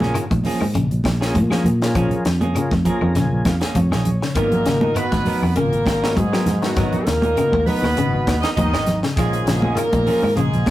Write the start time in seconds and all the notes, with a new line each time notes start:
Already playing: A#1 C#3 C#4 F4 G#4 A#4
0.00 A#3 C#4 G#4, snare, high conga
0.14 D#3, closed hi-hat, claves, shekere
0.31 A#1 D#3, kick, closed hi-hat, high conga
0.44 F3 A#3 C#4 G#4, open hi-hat, low conga, shekere
0.60 G#2 D#3, claves
0.74 A#1 C#3, closed hi-hat, high conga, shekere
0.91 A#1, closed hi-hat
1.04 A#1 D#3, kick, snare, closed hi-hat, high conga, claves, shekere
1.20 A#3 C#4 F4 G#4 A#4, snare
1.35 A#2 F3, kick, closed hi-hat, high conga, shekere
1.50 F3 A#3 C#4 F4 G#4 A#4, snare, high conga, claves
1.64 A#2, closed hi-hat, low conga, shekere
1.82 D#3 C#4 F4 G#4 A#4, snare, closed hi-hat
1.94 A#1 F3 C#4 G#4, muted clean electric guitar stroke, kick, closed hi-hat, high conga, claves, shekere
2.10 closed hi-hat, low conga
2.25 F2 D#3, snare, closed hi-hat, shekere
2.41 A#3 C#4 G#4, closed hi-hat, high conga
2.54 C#3 C#4 F4 G#4 A#4, closed hi-hat, high conga, claves, shekere
2.71 F2 D#3, kick, snare, high conga
2.84 F3 A#3 C#4 F4 G#4 A#4 A#5, muted clean electric guitar stroke, kick, closed hi-hat, low conga, shekere
3.01 F2 D#3, claves
3.15 A#1 C#3 G#5, snare, closed hi-hat, high conga, shekere
3.31 A#1
3.45 F2 D#3 F5, kick, snare, closed hi-hat, high conga, claves, shekere
3.61 A#3 C#4 G#4, snare, closed hi-hat
3.74 F2 F3 C#5, kick, closed hi-hat, high conga, shekere
3.92 A#1 D#3 A#3 C#4 G#4, snare, claves
4.05 C#5, closed hi-hat, low conga, shekere
4.22 C#3, snare
4.34 G#1 A#2 D#3 F#3 A#3 B3 D#4 F#4 A#4, kick, closed hi-hat, high conga, claves, shekere
4.52 closed hi-hat, low conga
4.65 G#1 C#3, snare, closed hi-hat, shekere
4.81 D#4 A#4, high conga
4.95 B2 D#3 B3 B4, closed hi-hat, high conga, claves, shekere
5.12 G#1 D#3, kick, snare, closed hi-hat, high conga
5.25 F#3 B3 D#4 A#4, open hi-hat, high conga, low conga, shekere
5.42 F2 D#3, claves
5.56 G#1 A#2 C#3 A#3 A#4, closed hi-hat, high conga, shekere
5.72 G#1, closed hi-hat
5.86 G#1 D#3, kick, snare, closed hi-hat, high conga, claves, shekere
6.02 B3 D#4 F#4 A#4 C#5, snare
6.14 G#2 F#3 G#3 G#4, kick, closed hi-hat, high conga, shekere
6.33 F#3 B3 D#4 F#4 A#4, snare, claves
6.46 G#2, snare, closed hi-hat, low conga, shekere
6.62 F#2 D#3 F#3 B3 D#4 F#4 A#4, snare, closed hi-hat
6.76 G#1 F#3 B3 D#4 A#4, kick, snare, closed hi-hat, high conga, claves, shekere
6.92 closed hi-hat, low conga
7.05 D#2 A#2 D#3 A#3 A#4, snare, closed hi-hat, shekere
7.22 D#4 A#4, muted clean electric guitar stroke, closed hi-hat, high conga
7.36 C#3 B3 D#4 F#4 A#4, closed hi-hat, high conga, claves, shekere
7.52 D#2 D#3, kick, high conga
7.66 B2 B3 D#4 F#4 A#4 B4, open hi-hat, high conga, low conga, shekere
7.82 D#2 D#3, snare, claves
7.96 G#1 C#3, closed hi-hat, high conga, shekere
8.13 G#1
8.27 D#2 D#3, kick, snare, closed hi-hat, high conga, claves, shekere
8.41 D#3 B3 D#4 A#4 D#5, snare, closed hi-hat
8.56 D#2 D#3 F3 D#4 D#5, kick, closed hi-hat, high conga, shekere
8.73 G#1 D#3 B3 D#4 A#4, snare, claves
8.86 snare, closed hi-hat, low conga, shekere
9.03 C#3, snare
9.16 A#1 G#2 D#3 F3 G#3 A#3 C#4 F4 G#4, muted clean electric guitar stroke, kick, snare, closed hi-hat, high conga, claves, shekere
9.33 closed hi-hat
9.45 A#1 C#3, snare, closed hi-hat, shekere
9.62 A#3 C#4 G#4, high conga
9.75 A#2 D#3 A#3 A#4, closed hi-hat, high conga, claves, shekere
9.93 A#1 D#3, kick, closed hi-hat, high conga
10.06 F3 A#3 C#4 G#4, open hi-hat, low conga, shekere
10.23 G#2 D#3, claves
10.35 A#1 G#2 C#3 G#3 G#4, closed hi-hat, high conga, shekere
10.53 A#1, closed hi-hat
10.66 A#1 D#3, kick, closed hi-hat, high conga, shekere